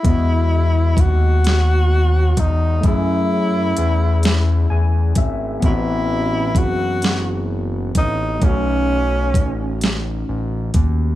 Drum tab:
HH |x-xx-x|x-xx-x|x-xx-x|x-xx-x|
SD |---o--|---o--|---o--|---o--|
BD |o-o--o|o----o|o-o--o|o-o--o|